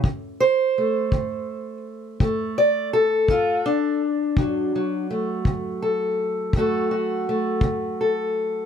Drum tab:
BD |o--o--o--o--|o--o--o--o--|